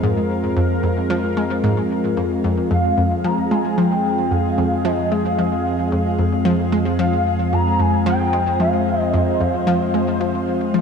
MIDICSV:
0, 0, Header, 1, 6, 480
1, 0, Start_track
1, 0, Key_signature, -4, "minor"
1, 0, Tempo, 535714
1, 507, Time_signature, 4, 2, 24, 8
1, 9688, End_track
2, 0, Start_track
2, 0, Title_t, "Analog synth lead"
2, 0, Program_c, 0, 81
2, 2431, Note_on_c, 0, 77, 103
2, 2910, Note_on_c, 0, 82, 111
2, 2924, Note_off_c, 0, 77, 0
2, 3148, Note_on_c, 0, 80, 102
2, 3161, Note_off_c, 0, 82, 0
2, 3386, Note_on_c, 0, 79, 111
2, 3399, Note_off_c, 0, 80, 0
2, 3868, Note_on_c, 0, 77, 97
2, 3881, Note_off_c, 0, 79, 0
2, 4351, Note_on_c, 0, 75, 98
2, 4365, Note_off_c, 0, 77, 0
2, 4587, Note_on_c, 0, 77, 97
2, 4600, Note_off_c, 0, 75, 0
2, 6027, Note_off_c, 0, 77, 0
2, 6270, Note_on_c, 0, 77, 110
2, 6750, Note_on_c, 0, 82, 117
2, 6763, Note_off_c, 0, 77, 0
2, 6989, Note_on_c, 0, 80, 106
2, 7002, Note_off_c, 0, 82, 0
2, 7223, Note_off_c, 0, 80, 0
2, 7228, Note_on_c, 0, 79, 110
2, 7674, Note_off_c, 0, 79, 0
2, 7710, Note_on_c, 0, 77, 94
2, 8059, Note_off_c, 0, 77, 0
2, 8059, Note_on_c, 0, 75, 94
2, 8190, Note_off_c, 0, 75, 0
2, 8190, Note_on_c, 0, 75, 97
2, 8431, Note_on_c, 0, 77, 93
2, 8444, Note_off_c, 0, 75, 0
2, 9688, Note_off_c, 0, 77, 0
2, 9688, End_track
3, 0, Start_track
3, 0, Title_t, "Analog synth pad"
3, 0, Program_c, 1, 89
3, 0, Note_on_c, 1, 53, 74
3, 0, Note_on_c, 1, 56, 71
3, 0, Note_on_c, 1, 60, 71
3, 0, Note_on_c, 1, 65, 69
3, 0, Note_on_c, 1, 70, 84
3, 2416, Note_off_c, 1, 70, 0
3, 2427, Note_on_c, 1, 68, 84
3, 6255, Note_off_c, 1, 68, 0
3, 6267, Note_on_c, 1, 72, 84
3, 9688, Note_off_c, 1, 53, 0
3, 9688, Note_off_c, 1, 56, 0
3, 9688, Note_off_c, 1, 60, 0
3, 9688, Note_off_c, 1, 65, 0
3, 9688, Note_off_c, 1, 72, 0
3, 9688, End_track
4, 0, Start_track
4, 0, Title_t, "Synth texture"
4, 0, Program_c, 2, 99
4, 0, Note_on_c, 2, 56, 78
4, 0, Note_on_c, 2, 77, 80
4, 2415, Note_off_c, 2, 56, 0
4, 2426, Note_on_c, 2, 56, 82
4, 2426, Note_on_c, 2, 68, 80
4, 2453, Note_off_c, 2, 77, 0
4, 9688, Note_off_c, 2, 56, 0
4, 9688, Note_off_c, 2, 68, 0
4, 9688, End_track
5, 0, Start_track
5, 0, Title_t, "Synth arpeggio sound"
5, 0, Program_c, 3, 84
5, 30, Note_on_c, 3, 44, 96
5, 154, Note_off_c, 3, 44, 0
5, 507, Note_on_c, 3, 41, 84
5, 695, Note_off_c, 3, 41, 0
5, 746, Note_on_c, 3, 41, 77
5, 872, Note_off_c, 3, 41, 0
5, 986, Note_on_c, 3, 53, 96
5, 1062, Note_off_c, 3, 53, 0
5, 1227, Note_on_c, 3, 56, 77
5, 1415, Note_off_c, 3, 56, 0
5, 1467, Note_on_c, 3, 44, 99
5, 1592, Note_off_c, 3, 44, 0
5, 1944, Note_on_c, 3, 41, 76
5, 2134, Note_off_c, 3, 41, 0
5, 2188, Note_on_c, 3, 41, 80
5, 2313, Note_off_c, 3, 41, 0
5, 2427, Note_on_c, 3, 41, 84
5, 2615, Note_off_c, 3, 41, 0
5, 2667, Note_on_c, 3, 41, 77
5, 2792, Note_off_c, 3, 41, 0
5, 2906, Note_on_c, 3, 53, 96
5, 2982, Note_off_c, 3, 53, 0
5, 3147, Note_on_c, 3, 56, 79
5, 3335, Note_off_c, 3, 56, 0
5, 3385, Note_on_c, 3, 53, 84
5, 3511, Note_off_c, 3, 53, 0
5, 3864, Note_on_c, 3, 41, 74
5, 4054, Note_off_c, 3, 41, 0
5, 4103, Note_on_c, 3, 41, 81
5, 4230, Note_off_c, 3, 41, 0
5, 4344, Note_on_c, 3, 53, 103
5, 4421, Note_off_c, 3, 53, 0
5, 4585, Note_on_c, 3, 56, 74
5, 4774, Note_off_c, 3, 56, 0
5, 4826, Note_on_c, 3, 53, 76
5, 4952, Note_off_c, 3, 53, 0
5, 5307, Note_on_c, 3, 41, 80
5, 5495, Note_off_c, 3, 41, 0
5, 5544, Note_on_c, 3, 41, 75
5, 5671, Note_off_c, 3, 41, 0
5, 5781, Note_on_c, 3, 53, 100
5, 5859, Note_off_c, 3, 53, 0
5, 6025, Note_on_c, 3, 56, 81
5, 6214, Note_off_c, 3, 56, 0
5, 6264, Note_on_c, 3, 53, 89
5, 6391, Note_off_c, 3, 53, 0
5, 6744, Note_on_c, 3, 41, 75
5, 6934, Note_off_c, 3, 41, 0
5, 6984, Note_on_c, 3, 41, 80
5, 7111, Note_off_c, 3, 41, 0
5, 7223, Note_on_c, 3, 53, 101
5, 7300, Note_off_c, 3, 53, 0
5, 7465, Note_on_c, 3, 56, 78
5, 7654, Note_off_c, 3, 56, 0
5, 7705, Note_on_c, 3, 53, 73
5, 7831, Note_off_c, 3, 53, 0
5, 8186, Note_on_c, 3, 41, 87
5, 8375, Note_off_c, 3, 41, 0
5, 8427, Note_on_c, 3, 41, 75
5, 8553, Note_off_c, 3, 41, 0
5, 8664, Note_on_c, 3, 53, 101
5, 8741, Note_off_c, 3, 53, 0
5, 8908, Note_on_c, 3, 56, 75
5, 9095, Note_off_c, 3, 56, 0
5, 9145, Note_on_c, 3, 53, 83
5, 9271, Note_off_c, 3, 53, 0
5, 9625, Note_on_c, 3, 53, 94
5, 9688, Note_off_c, 3, 53, 0
5, 9688, End_track
6, 0, Start_track
6, 0, Title_t, "Analog synth bass"
6, 0, Program_c, 4, 38
6, 0, Note_on_c, 4, 41, 86
6, 2404, Note_off_c, 4, 41, 0
6, 2426, Note_on_c, 4, 41, 84
6, 9688, Note_off_c, 4, 41, 0
6, 9688, End_track
0, 0, End_of_file